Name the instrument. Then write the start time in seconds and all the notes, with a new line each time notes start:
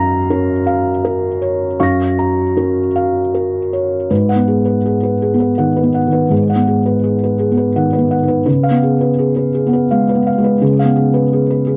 felt piano
Already playing: F#2 F5 A#5
0.30 C#4 A#4
0.67 F5
1.05 A#4
1.42 C#5
1.80 F#2 F5 C#6 A#6
2.19 A#5
2.57 C#4 A#4
2.96 F5
3.35 A#4
3.73 C#5
4.11 G#2 B4
4.29 F#5
4.36 B3
4.47 G#4
4.65 B4
4.85 G#4
5.03 B4
5.22 G#4
5.34 B3
5.40 B4
5.58 D#3 F#5
5.76 B4
5.83 B3
5.94 F#5
6.07 D#3
6.12 B4
6.30 G#2 G#4
6.50 F#5
6.56 B3
6.67 G#4
6.86 B4
7.04 G#4
7.23 B4
7.39 G#4
7.51 B3
7.57 B4
7.76 D#3 F#5
7.93 B4
7.98 B3
8.11 F#5
8.23 D#3
8.28 B4
8.46 C#3 B4
8.63 F5
8.71 B3
8.83 G#4
9.01 B4
9.19 G#4
9.36 B4
9.55 G#4
9.67 B3
9.73 B4
9.91 G#3 F5
10.09 B4
10.15 B3
10.27 F5
10.38 G#3
10.44 B4
10.61 C#3 G#4
10.79 F5
10.84 B3
10.96 G#4
11.14 B4
11.33 G#4
11.50 B4
11.67 G#4